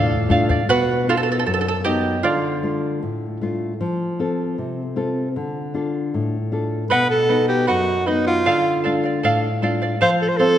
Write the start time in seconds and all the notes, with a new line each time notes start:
Already playing: A2 A3 D4 F4 A4 D5 F5
0.29 A3 D4 F4 A4 D5 F5, bombo low
0.49 D5 F5, bombo low
0.69 B2 F#4 B4
1.08 B3 D#4 F4 F#4 A4
1.17 A4
1.23 A4
1.32 A4
1.39 A4
1.47 F#2 A4
1.54 A4
1.61 A4
1.68 A4
1.84 B3 D#4 F#4 G4 D#5
2.23 D3 F4 D5
2.63 A3 D4 F4
3.03 A2
3.41 A3 D4 F4
3.81 F3
4.19 C4 F4 A4
4.58 C3
4.96 C4 F4 A4
5.36 D3
5.74 D4 F4 A4
6.14 A2
6.52 D4 F4 A4
6.90 B2 B4 D#5 F#5
7.10 A4
7.29 B3 D#4 F#4 B4 D#5 F#5
7.48 G4 D#5 F#5
7.67 F#2 F#4 B4 D#5 F#5
8.06 B3 D#4 F#4 B4 D#5 F#5
8.27 F4 D#5 F#5
8.46 D3 A4 D5 F5
8.84 A3 D4 F4 A4 D5 F5
9.04 D5 F5
9.23 A2 A4 D5 F5
9.62 A3 D4 F4 A4 D5 F5
9.82 D5 F5
10.01 F3 A4 C5 F5
10.22 A4
10.29 C5
10.38 C4 F4 A4 C5 F5